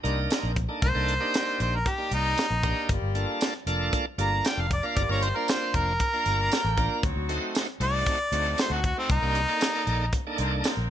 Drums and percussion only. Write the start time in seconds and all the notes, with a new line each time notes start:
0.05 closed hi-hat
0.30 snare, closed hi-hat, tambourine
0.56 kick, closed hi-hat
0.82 kick, closed hi-hat
1.08 closed hi-hat
1.34 snare, closed hi-hat, tambourine
1.60 closed hi-hat
1.86 kick, closed hi-hat
2.12 closed hi-hat
2.38 snare, closed hi-hat, tambourine
2.63 kick, closed hi-hat
2.89 kick, closed hi-hat
3.15 closed hi-hat
3.41 snare, closed hi-hat, tambourine
3.67 closed hi-hat
3.93 kick, closed hi-hat
4.19 closed hi-hat
4.45 snare, closed hi-hat, tambourine
4.71 kick, closed hi-hat
4.97 kick, closed hi-hat
5.23 closed hi-hat
5.48 snare, closed hi-hat, tambourine
5.74 kick, closed hi-hat
6.00 kick, closed hi-hat
6.26 closed hi-hat
6.52 snare, closed hi-hat, tambourine
6.78 kick, closed hi-hat
7.03 kick, closed hi-hat
7.29 closed hi-hat
7.55 snare, closed hi-hat, tambourine
7.81 closed hi-hat
8.06 kick, closed hi-hat
8.32 closed hi-hat
8.58 snare, closed hi-hat, tambourine
8.84 kick, closed hi-hat
9.10 kick, closed hi-hat
9.35 closed hi-hat
9.61 snare, closed hi-hat, tambourine
9.87 closed hi-hat
10.13 kick, closed hi-hat
10.38 closed hi-hat
10.64 snare, closed hi-hat, tambourine